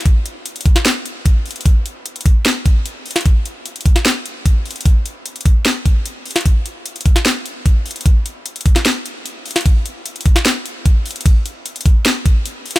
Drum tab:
RD |--------------------------------|--------------------------------|--------------------------------|--------------------------------|
HH |x---x---x-xxx---x---x---x---oxxx|x---x---x-xxx---x---x---x---oxxx|x---x---x-xxx---x---x---x---oxxx|x---x---x-xxx---x---x---x---oxxx|
SD |--------------o-o---------------|----------------o-------------o-|--------------o-o---------------|----------------o-------------o-|
BD |o-----------o-----------o-------|o-----------o-------o-----------|o-----------o-----------o-------|o-----------o-------o-----------|

RD |--------------------------------|--------------------------------|x-------------------------------|x-------------------------------|
HH |x---x---x-xxx---x---x---x---oxxx|x---x---x-xxx---x---x---x---oxxx|x---x---x-xxx---x---x---x---oxxx|x---x---x-xxx---x---x---x---oxx-|
SD |--------------o-o---------------|--------------o-o-------------o-|--------------o-o---------------|----------------o-------------o-|
BD |o-----------o-----------o-------|o-----------o-------------------|o-----------o-----------o-------|o-----------o-------o-----------|